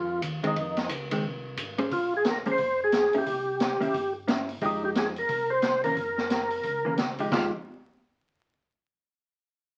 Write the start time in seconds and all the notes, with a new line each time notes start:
Already playing: F2 F4
0.22 D#2, kick, hi-hat pedal, ride
0.43 D#2 D#3 G#3 C4, ride
0.47 D#4
0.56 F2, kick, ride
0.77 snare, ride
0.89 C#2, kick, hi-hat pedal, ride
1.11 D#3 G#3 C4, ride
1.24 C2, kick
1.57 G#1, kick, hi-hat pedal, ride
1.78 A#3 C#4 G#4 C5, ride
1.91 A#1 F4, kick, open hi-hat
2.17 G#4
2.25 snare, closed hi-hat
2.30 A#4
2.45 A#1 A#3 C#4 G#4 C5, open hi-hat
2.52 C5
2.58 F1, kick, open hi-hat
2.84 G#4
2.92 snare, closed hi-hat
3.13 F1 A#3 C#4 E4, open hi-hat
3.18 G4
3.26 C2, kick, open hi-hat
3.60 snare, closed hi-hat
3.80 C2 A#3 C#4 E4, open hi-hat
3.94 G1, kick, open hi-hat
4.28 A#3 C#4 E4, snare, closed hi-hat
4.49 open hi-hat
4.61 F1 F3 G#3 D#4 G4, kick, open hi-hat
4.66 D#4
4.85 G4
4.95 G#4, snare, closed hi-hat
5.16 A#4, open hi-hat
5.28 C2, kick, open hi-hat
5.50 C5
5.62 snare, closed hi-hat
5.83 E3 A#3 C#4 A#4, open hi-hat
5.96 F#1, kick, open hi-hat
6.18 snare
6.30 snare, closed hi-hat
6.50 open hi-hat
6.63 C#2, kick, open hi-hat
6.85 E3 A#3 C#4
6.97 snare, closed hi-hat
7.18 F3 G#3 D#4 G4, open hi-hat
7.31 F2 F3 G#3 D#4 F4 G4, kick, snare, crash